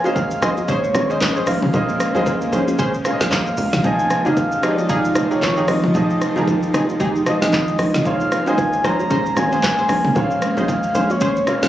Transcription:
Already playing: G#3 A#3 C#4 F4 G#4 C5 C#5
0.04 G#1 A#3 C#4 F4 G#4 C5 D#5 F5, low bongo, shaker
0.16 kick, high bongo, shaker
0.31 shaker
0.42 A#1 A#3 C#4 F4 G#4 C5 D#5, cross-stick, low bongo, shaker
0.57 low bongo, shaker
0.68 C#4 G#4 C5 C#5, kick, low conga, shaker
0.84 shaker
0.94 G#1 A#3 F4 G#4 C5 C#5, cross-stick, low bongo, low conga, shaker
1.10 C#4 G#4 C5 D#5, shaker
1.21 A#1, kick, clap, high bongo, shaker
1.36 C#4 G#4 C5, shaker
1.47 A#1 F5, cross-stick, open hi-hat, shaker
1.62 G#1, mid tom
1.73 A#1 A#3 F4 G#4 C5 D#5, kick, low conga, shaker
1.89 shaker
2.00 cross-stick, shaker
2.15 A#1 A#3 C#4 F4 G#4 C5 D#5, low bongo, shaker
2.26 kick, high bongo, shaker
2.41 shaker
2.52 A#1 C#4 G#4 C5, low bongo, shaker
2.68 low bongo, shaker
2.78 G#1 C#4 G#4 C5, kick, low conga, shaker
2.94 shaker
3.05 A#3 F4 G#4 C5 C#5 F5, cross-stick, low bongo, low conga, shaker
3.13 D#5
3.20 A#1 C#4 G#4 C5, snare, shaker
3.32 A#1, kick, clap, high bongo, shaker
3.46 shaker
3.57 C#2, open hi-hat, shaker
3.73 A#1, snare, mid tom
3.83 F1 F3 G#3 D#4 F4 G#4 D#5 G#5, kick, low conga, shaker
3.99 shaker
4.10 cross-stick, shaker
4.25 F1 F3 D#4 F4 G4 G#4 D#5 F5, low bongo, shaker
4.37 kick, high bongo, shaker
4.52 shaker
4.63 G#1 F3 D#4 F4 G4 G#4 C#5 D#5, cross-stick, low bongo, shaker
4.71 D5
4.78 low bongo, shaker
4.89 D#4 G4 G#4 F5, kick, low conga, shaker
5.05 shaker
5.15 F1 F3 F4 G4 G#4 D#5, cross-stick, low bongo, low conga, shaker
5.31 D#4 G4 G#4 C#5, shaker
5.42 G#1, kick, clap, high bongo, shaker
5.57 D#4 G4 G#4, shaker
5.68 G#1 D#5, cross-stick, open hi-hat, shaker
5.84 F1, mid tom
5.94 F1 F3 F4 G4 G#4 D#5, kick, low conga, shaker
6.10 shaker
6.21 cross-stick, shaker
6.36 F1 F3 D#4 F4 G4 G#4 A#4, low bongo, shaker
6.47 kick, high bongo, shaker
6.63 shaker
6.73 F1 D#4 G4 G#4, cross-stick, low bongo, shaker
6.89 low bongo, shaker
7.00 F1 D#4 G4 G#4, kick, low conga, shaker
7.16 shaker
7.26 F3 F4 G4 G#4 D#5, cross-stick, low bongo, low conga, shaker
7.41 G#1 D#4 G4 G#4, snare, shaker
7.53 G#1, kick, clap, high bongo, shaker
7.68 shaker
7.79 A#1, cross-stick, open hi-hat, shaker
7.94 G#1, snare, mid tom, shaker
8.05 A#1 G#3 A#3 C#4 F4 G#4 C5 C#5 F5, kick, low conga, shaker
8.20 shaker
8.32 cross-stick, shaker
8.46 G#1 A#3 C#4 F4 G#4 C5 D#5 G#5, low bongo, shaker
8.58 kick, high bongo, shaker
8.73 shaker
8.84 A#1 A#3 C#4 F4 G#4 C5 C#5 A#5, cross-stick, low bongo, shaker
8.99 low bongo, shaker
9.10 C#4 G#4 C5, kick, low conga, shaker
9.26 shaker
9.36 G#1 A#3 F4 G#4 C5 C#5 G#5, cross-stick, low bongo, low conga, shaker
9.52 C#4 G#4 C5, shaker
9.63 A#1, kick, clap, high bongo, shaker
9.78 C#4 G#4 C5, shaker
9.89 A#1, cross-stick, open hi-hat, shaker
10.05 G#1, mid tom
10.15 A#1 A#3 F4 G#4 C5 C#5 F5, kick, low conga, shaker
10.31 shaker
10.42 cross-stick, shaker
10.57 A#1 A#3 C#4 F4 G#4 C5 D#5, low bongo, shaker
10.68 F5, kick, high bongo, shaker
10.83 shaker
10.95 A#1 C#4 G#4 C5, low bongo, shaker
11.10 C#5, low bongo, shaker
11.21 G#1 C#4 G#4 C5, kick, low conga, shaker
11.36 shaker
11.47 A#3 F4 G#4 C5 C#5 F5, cross-stick, low bongo, low conga, shaker
11.63 A#1 C#4 G#4 C5, snare, shaker

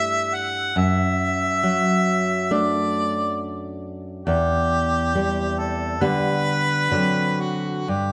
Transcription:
Already playing: G2 A3 E4 E5
0.34 F#5
0.76 F#2 E5
1.63 F#3
2.51 A3 D4 D5
4.26 E2 G4
5.15 G3 C4
5.58 A4
6.01 D3 G3 B3 B4
6.91 D3 F#3 C4
7.40 F#4
7.88 G2 G4

